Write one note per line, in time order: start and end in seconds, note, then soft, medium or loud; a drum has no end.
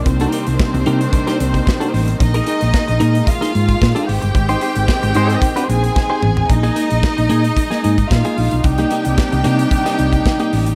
0.00 4.04 D#3 medium
0.00 4.04 A#3 medium
0.06 0.25 C2 loud
0.06 2.18 C3 medium
0.06 2.18 G3 medium
0.06 2.17 C4 medium
0.06 2.18 D4 medium
0.06 2.17 C5 loud
0.06 muted clean electric guitar stroke soft
0.06 kick loud
0.06 closed hi-hat medium
0.20 0.32 D#4 medium
0.20 0.32 G4 medium
0.20 0.33 A#4 medium
0.20 closed hi-hat soft
0.32 0.45 D#4 medium
0.32 0.46 G4 medium
0.32 0.46 A#4 medium
0.32 closed hi-hat medium
0.47 0.56 C2 medium
0.47 muted clean electric guitar stroke medium
0.47 closed hi-hat soft
0.59 muted clean electric guitar stroke soft
0.59 kick loud
0.59 snare loud
0.74 0.83 C2 loud
0.74 muted clean electric guitar stroke medium
0.74 closed hi-hat soft
0.86 1.06 C3 loud
0.86 1.02 D#4 medium
0.86 1.00 G4 medium
0.86 1.00 A#4 loud
0.86 closed hi-hat medium
1.01 muted clean electric guitar stroke soft
1.01 closed hi-hat medium
1.13 muted clean electric guitar stroke soft
1.13 kick loud
1.13 closed hi-hat medium
1.27 1.38 D#4 medium
1.27 1.39 G4 medium
1.27 1.39 A#4 medium
1.27 snare soft
1.27 closed hi-hat medium
1.39 1.59 C2 medium
1.39 muted clean electric guitar stroke soft
1.39 closed hi-hat medium
1.54 muted clean electric guitar stroke medium
1.54 kick medium
1.54 closed hi-hat soft
1.66 muted clean electric guitar stroke soft
1.66 kick loud
1.66 snare loud
1.80 1.92 D#4 medium
1.80 1.93 G4 medium
1.80 1.93 A#4 medium
1.80 closed hi-hat medium
1.93 2.13 A1 medium
1.93 muted clean electric guitar stroke soft
1.93 open hi-hat medium
2.08 muted clean electric guitar stroke soft
2.08 closed hi-hat medium
2.20 2.40 A#1 loud
2.20 8.60 G#3 medium
2.20 3.26 D#4 medium
2.20 3.25 D#5 loud
2.20 muted clean electric guitar stroke medium
2.20 kick loud
2.20 closed hi-hat medium
2.34 2.46 D#4 medium
2.34 2.46 G#4 medium
2.34 2.47 A#4 medium
2.34 closed hi-hat soft
2.47 2.60 D#4 medium
2.47 2.60 G#4 medium
2.47 2.60 A#4 medium
2.47 closed hi-hat medium
2.61 2.71 A#1 medium
2.61 muted clean electric guitar stroke soft
2.61 closed hi-hat medium
2.74 muted clean electric guitar stroke soft
2.74 kick loud
2.74 snare loud
2.88 2.98 A#1 loud
2.88 muted clean electric guitar stroke medium
2.88 closed hi-hat soft
3.00 3.20 A#2 loud
3.00 3.16 D#4 medium
3.00 3.14 G#4 medium
3.00 3.13 A#4 loud
3.00 closed hi-hat medium
3.14 muted clean electric guitar stroke soft
3.14 closed hi-hat soft
3.27 4.06 F4 medium
3.27 4.06 F5 loud
3.27 muted clean electric guitar stroke soft
3.27 kick loud
3.27 closed hi-hat medium
3.41 3.52 D#4 medium
3.41 3.53 G#4 medium
3.41 3.53 A#4 medium
3.41 snare soft
3.41 closed hi-hat medium
3.53 3.74 G#2 medium
3.53 muted clean electric guitar stroke soft
3.53 closed hi-hat medium
3.68 muted clean electric guitar stroke soft
3.68 kick medium
3.68 closed hi-hat soft
3.81 3.92 A#2 loud
3.81 muted clean electric guitar stroke soft
3.81 kick loud
3.81 snare loud
3.95 4.06 D#4 medium
3.95 4.07 G#4 medium
3.95 4.08 A#4 medium
3.95 closed hi-hat medium
4.08 4.19 G#1 medium
4.08 6.47 D#3 medium
4.08 6.47 C4 medium
4.08 5.65 G4 medium
4.08 5.66 G5 loud
4.08 muted clean electric guitar stroke soft
4.08 open hi-hat medium
4.22 4.32 G1 medium
4.22 muted clean electric guitar stroke medium
4.22 closed hi-hat medium
4.35 4.54 G#1 loud
4.35 muted clean electric guitar stroke medium
4.35 kick loud
4.35 closed hi-hat medium
4.49 4.61 D#4 medium
4.49 4.61 G4 medium
4.49 4.61 C5 medium
4.49 closed hi-hat soft
4.61 4.74 D#4 medium
4.61 4.75 G4 medium
4.61 4.75 C5 medium
4.61 closed hi-hat medium
4.75 4.85 G#1 medium
4.75 muted clean electric guitar stroke medium
4.75 closed hi-hat medium
4.88 muted clean electric guitar stroke soft
4.88 kick loud
4.88 snare loud
5.03 5.12 G#1 loud
5.03 muted clean electric guitar stroke medium
5.03 closed hi-hat medium
5.14 5.35 G#2 loud
5.14 5.38 G#3 loud
5.14 5.31 D#4 medium
5.14 5.38 G4 loud
5.14 5.29 G4 loud
5.14 5.38 C5 loud
5.14 5.28 C5 loud
5.14 closed hi-hat medium
5.30 closed hi-hat soft
5.42 muted clean electric guitar stroke soft
5.42 kick loud
5.42 closed hi-hat medium
5.56 5.67 D#4 medium
5.56 5.68 G4 medium
5.56 5.68 C5 medium
5.56 closed hi-hat medium
5.69 5.88 A#1 loud
5.69 6.48 G#4 medium
5.69 6.48 G#5 medium
5.69 muted clean electric guitar stroke soft
5.69 closed hi-hat medium
5.83 muted clean electric guitar stroke soft
5.83 closed hi-hat soft
5.96 muted clean electric guitar stroke soft
5.96 kick loud
5.96 snare medium
6.10 6.21 D#4 medium
6.10 6.22 G4 medium
6.10 6.22 C5 medium
6.22 6.42 A1 medium
6.22 muted clean electric guitar stroke soft
6.22 mid tom loud
6.37 muted clean electric guitar stroke medium
6.37 floor tom loud
6.49 6.69 A#1 loud
6.49 10.75 A#3 medium
6.49 10.75 D#4 medium
6.49 8.07 D#4 loud
6.49 8.07 D#5 loud
6.49 muted clean electric guitar stroke soft
6.49 kick loud
6.49 closed hi-hat medium
6.63 6.74 A#3 medium
6.63 6.75 D#4 medium
6.63 6.75 G#4 medium
6.63 closed hi-hat soft
6.76 6.89 A#3 medium
6.76 6.89 D#4 medium
6.76 6.89 G#4 medium
6.76 closed hi-hat medium
6.90 7.00 A#1 medium
6.90 muted clean electric guitar stroke medium
6.90 closed hi-hat soft
7.03 muted clean electric guitar stroke soft
7.03 kick loud
7.03 snare loud
7.17 7.27 A#1 loud
7.17 muted clean electric guitar stroke medium
7.17 closed hi-hat soft
7.29 7.50 A#2 medium
7.29 7.46 A#3 medium
7.29 7.43 D#4 loud
7.29 7.42 G#4 loud
7.29 closed hi-hat medium
7.44 muted clean electric guitar stroke medium
7.44 closed hi-hat medium
7.57 muted clean electric guitar stroke soft
7.57 kick loud
7.57 closed hi-hat loud
7.70 7.82 A#3 medium
7.70 7.83 D#4 medium
7.70 7.83 G#4 medium
7.70 snare soft
7.70 closed hi-hat medium
7.83 8.03 G#2 medium
7.83 7.96 A#3 medium
7.83 7.97 D#4 medium
7.83 7.97 G#4 medium
7.83 closed hi-hat medium
7.98 muted clean electric guitar stroke soft
7.98 kick medium
7.98 closed hi-hat medium
8.10 8.21 A#2 loud
8.10 8.63 F4 medium
8.10 8.63 F5 medium
8.10 muted clean electric guitar stroke soft
8.10 kick loud
8.10 snare loud
8.25 8.37 A#3 medium
8.25 8.37 D#4 medium
8.25 8.37 G#4 medium
8.25 closed hi-hat soft
8.38 8.48 A#1 medium
8.38 muted clean electric guitar stroke soft
8.38 open hi-hat medium
8.51 8.61 B1 medium
8.51 muted clean electric guitar stroke soft
8.51 closed hi-hat medium
8.64 8.84 C2 loud
8.64 10.75 C3 medium
8.64 10.75 G3 medium
8.64 10.75 D4 medium
8.64 10.75 G4 medium
8.64 10.75 G5 loud
8.64 muted clean electric guitar stroke soft
8.64 kick loud
8.64 closed hi-hat medium
8.78 8.90 A#3 medium
8.78 8.91 D#4 medium
8.78 8.91 G4 loud
8.78 closed hi-hat soft
8.91 9.04 A#3 medium
8.91 9.04 D#4 medium
8.91 9.05 G4 medium
8.91 closed hi-hat medium
9.05 9.15 C2 medium
9.05 muted clean electric guitar stroke soft
9.05 closed hi-hat soft
9.18 muted clean electric guitar stroke soft
9.18 kick loud
9.18 snare loud
9.32 9.42 C2 loud
9.32 muted clean electric guitar stroke medium
9.32 closed hi-hat soft
9.44 9.64 C3 loud
9.44 9.61 A#3 medium
9.44 9.58 D#4 loud
9.44 9.57 G4 loud
9.44 closed hi-hat medium
9.59 muted clean electric guitar stroke soft
9.59 closed hi-hat medium
9.71 muted clean electric guitar stroke soft
9.71 kick loud
9.71 closed hi-hat medium
9.86 9.97 A#3 medium
9.86 9.98 D#4 medium
9.86 9.98 G4 medium
9.86 snare soft
9.86 closed hi-hat medium
9.99 10.18 C2 medium
9.99 muted clean electric guitar stroke soft
9.99 closed hi-hat medium
10.13 muted clean electric guitar stroke soft
10.13 kick medium
10.13 closed hi-hat soft
10.26 muted clean electric guitar stroke soft
10.26 kick loud
10.26 snare loud
10.39 10.52 A#3 medium
10.39 10.52 D#4 medium
10.39 10.52 G4 medium
10.39 closed hi-hat soft
10.53 10.72 A1 medium
10.53 open hi-hat medium
10.66 muted clean electric guitar stroke soft
10.66 closed hi-hat medium